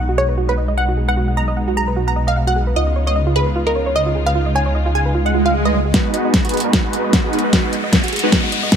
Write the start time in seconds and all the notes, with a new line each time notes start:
Already playing: B1 G#3 B3 D#4
0.09 F#4
0.17 G#4 C#5
0.29 B4
0.37 F#4
0.48 B4 F#5
0.57 D#5
0.68 D#5
0.77 F#5
0.88 F#4
0.97 G#4
1.08 B4 F#5
1.17 F#4
1.28 F#5
1.37 D#5 A#5
1.48 D#5
1.57 F#5
1.68 F#4
1.76 G#4 A#5
1.87 B4
1.96 F#4
2.07 F#5 A#5
2.16 D#5
2.27 D#5 F5
2.36 F#5
2.47 F#4 F#5
2.56 G#4
2.67 B4
2.76 C#2 C#3 D#4 F4 D#5
2.87 D#5
2.96 C#5
3.07 C#5 D#5
3.16 D#5
3.27 F4
3.36 G#4 B4
3.46 B4
3.56 F4
3.66 A#4 D#5
3.75 C#5
3.86 C#5
3.95 D#5
4.06 F4
4.15 G#4
4.26 B4 F5
4.35 F4
4.46 D#5
4.55 C#5 G#5
4.66 C#5
4.75 D#5
4.86 F4
4.95 G#4 G#5
5.05 B4
5.15 F4, swell
5.25 D#5 F#5
5.34 F4
5.45 F4 F5
5.54 G#4
5.65 B4 D#5
5.74 D#5
5.85 G#4
5.94 G#2 G#3 B3 D#4 F#4 B4, kick, snare, closed hi-hat, riser
6.05 F#5
6.14 D#5, closed hi-hat
6.25 D#5
6.34 F#5, kick, snare, closed hi-hat
6.45 F#4, closed hi-hat
6.49 closed hi-hat
6.54 G#4, closed hi-hat
6.57 closed hi-hat
6.60 closed hi-hat
6.64 G#3 B3 D#4 F#4 B4
6.73 F#4, kick, snare, closed hi-hat
6.84 F#5
6.93 D#5, closed hi-hat
7.04 D#5
7.13 F#5, kick, snare, closed hi-hat
7.24 F#4
7.33 G#4, closed hi-hat
7.39 closed hi-hat
7.44 B4
7.53 G#3 B3 D#4 F#4 B4, kick, snare, closed hi-hat
7.64 F#5
7.73 D#5, closed hi-hat
7.84 D#5
7.93 F#5, kick, snare, closed hi-hat
8.03 F#4, closed hi-hat
8.08 closed hi-hat
8.12 G#4, closed hi-hat
8.16 closed hi-hat
8.19 closed hi-hat
8.23 G#3 B3 D#4 F#4 B4
8.32 F#4, kick, snare, closed hi-hat
8.43 F#5
8.52 D#5, closed hi-hat
8.63 D#5
8.72 F#5, kick, snare, closed hi-hat